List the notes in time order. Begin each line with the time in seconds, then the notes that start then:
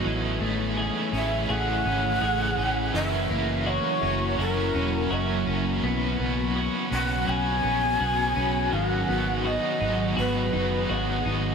Already playing: B3 D#4 F#4
0.04 A1 C#3 E3 A3 C#4 E4 G#4
0.39 A1 A3 E4 G#4
0.44 C#4
0.76 A3 C#4 E4
0.80 G#4
1.12 A1 E4 G#4 E5
1.16 C#4
1.49 A1 A3 C#4 E4 G#4 F#5
1.85 G#1 C#4 E4 G#4
1.89 C#4
2.21 A1 A3 C#4 E4
2.25 G#4
2.57 A1 E4 G#4
2.61 C#4
2.93 F#1 E3 F#3 A#3 C#4 E4 F#4 A#4 E5
3.29 F#1 A#3 E4 A#4
3.33 C#4
3.66 F#3 C#4 E4 F#4 C#5
3.70 A#4
4.02 F#1 E4 A#4
4.06 C#4
4.37 F#1 F#3 C#4 E4 F#4 A#4
4.74 E1 E4 A#4
4.78 C#4
5.09 F#1 F#3 C#4 E4 F#4 E5
5.14 A#4
5.46 F#1 E4 A#4
5.50 C#4
5.82 B1 B3 C#4 F#4 B4
6.18 B1 B3 F#4 B4
6.22 C#4
6.54 B3 C#4 F#4
6.58 B4
6.90 B1 F#4 B4 F#5
6.95 C#4
7.27 B1 B3 C#4 F#4 G#4 B4 G#5
7.62 A#1 F#4 B4
7.66 C#4
7.98 B1 B3 C#4 F#4
8.02 B4
8.34 B1 F#4 B4
8.39 C#4
8.71 G#1 G#2 D#3 F#3 B3 D#4 G#4 F5
8.87 F#5
9.07 G#1 B3 D#4 G#4
9.12 F#3
9.43 F#3 B3 D#4 F#4 D#5
9.47 G#4
9.79 G#1 B3 D#4 G#4
9.83 F#3
10.16 G#1 G#2 D#3 F#3 B3 D#4 F#4 G#4 B4
10.52 F#1 B3 D#4 G#4
10.56 F#3
10.88 G#1 F#3 B3 D#4 F#4 F#5
10.92 G#4
11.24 G#1 B3 D#4 G#4
11.28 F#3